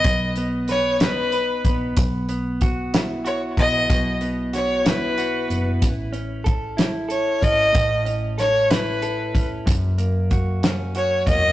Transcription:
Already playing: B3 D#4 B4 D#5
0.04 B1, kick, closed hi-hat
0.36 B3, closed hi-hat
0.68 B4 C#5, snare, closed hi-hat
1.00 D#4 B4, snare, closed hi-hat
1.32 B4, closed hi-hat
1.65 A#1 B3, kick, closed hi-hat
1.97 B1, kick, closed hi-hat
2.29 B3, closed hi-hat
2.61 F#4, kick, closed hi-hat
2.94 E4, snare, closed hi-hat
3.25 F#4 C#5, closed hi-hat
3.57 A#1 B3 D#5, kick, closed hi-hat
3.90 B1 B2, kick, closed hi-hat
4.21 B3, closed hi-hat
4.53 F#4 C#5, snare, closed hi-hat
4.85 E4 B4, snare, closed hi-hat
5.18 F#4, closed hi-hat
5.49 F#1 B3, closed hi-hat
5.82 A1, kick, closed hi-hat
6.13 C#4, closed hi-hat
6.44 A4, kick, closed hi-hat
6.77 E4, snare, closed hi-hat
7.09 A4 C#5, closed hi-hat
7.42 G#1 C#4 D#5, kick, closed hi-hat
7.72 A1 A2, kick, closed hi-hat
8.05 C#4, closed hi-hat
8.38 A4 C#5, snare, closed hi-hat
8.70 E4 B4, snare, closed hi-hat
9.02 A4, closed hi-hat
9.34 E1 C#4, kick, closed hi-hat
9.66 F#1 F#2, kick, closed hi-hat
9.98 A#3, closed hi-hat
10.31 F#4, kick, closed hi-hat
10.63 C#4, snare, closed hi-hat
10.95 F#4 C#5, closed hi-hat
11.27 E1 A#3 D#5, kick, closed hi-hat

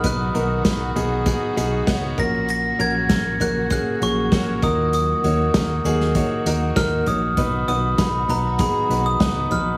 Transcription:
Already playing: D#3 F#3 B3 D#4 F#4 G#4 A#4 B4 C#5
0.04 B1 B3 D#4 F#4 B4 F#6, kick, closed hi-hat
0.34 B1 B3 D#4 F#4 A#4, closed hi-hat
0.65 B3 D#4 F#4 B4, kick, snare, closed hi-hat
0.96 B1 B3 D#4 F#4 G#4, closed hi-hat, floor tom
1.26 B3 D#4 F#4 G#4, kick, closed hi-hat
1.56 B1 B3 D#4 F#4 G#4, closed hi-hat
1.87 C#2 B3 D#4 F#4 C#5, kick, snare, closed hi-hat
2.17 A#1 A#2 C#3 F#3 A#3 C#4 F#4 A#4 A#6, kick, closed hi-hat, floor tom
2.48 A#6, closed hi-hat
2.79 A#1 A#3 C#4 F#4 A#4 G#6, closed hi-hat
3.09 A#1 A#3 C#4 F#4 A#4, kick, snare, closed hi-hat
3.40 A#1 A#3 C#4 F#4 A#4 F#6, closed hi-hat, floor tom
3.70 A#3 C#4 F#4 G#4 F#6, kick, closed hi-hat
4.01 A#1 A#3 C#4 F#4 G#4 C#6, closed hi-hat
4.32 A#1 A#3 C#4 F#4 C#5, kick, snare, closed hi-hat
4.62 D#2 A#2 D#3 A#3 D#4 F#4 A#4 D#6, kick, closed hi-hat, floor tom
4.93 D#6, closed hi-hat
5.24 D#2 A#3 D#4 F#4 C#5, closed hi-hat
5.54 D#2 A#3 D#4 F#4 A#4, kick, snare, closed hi-hat
5.84 D#2 A#3 D#4 F#4 G#4, closed hi-hat, floor tom
6.00 snare
6.15 A#3 D#4 F#4 C#5, kick, closed hi-hat
6.46 D#2 A#3 D#4 F#4 A#4, closed hi-hat
6.76 D#2 A#3 D#4 F#4 A#4 F6, kick, snare, closed hi-hat
7.06 A#1 A#3 D#4 F#4 C#5 D#6, closed hi-hat, floor tom
7.37 B1 F#3 B3 D#4 F#4 B4, kick, closed hi-hat
7.68 B1 B3 D#4 F#4 B4 D#6, closed hi-hat
7.98 B1 B3 D#4 F#4 B4 B5, kick, snare, closed hi-hat
8.29 B1 B3 D#4 F#4 B4 A#5, closed hi-hat, floor tom
8.59 B3 D#4 F#4 G#4 B5, kick, closed hi-hat
8.89 B1 B3 D#4 F#4 B4, closed hi-hat
9.06 D#6
9.20 C#2 B3 D#4 F#4 B4, kick, snare, closed hi-hat
9.50 A#1 B3 D#4 F#4 B4 F6, closed hi-hat, floor tom

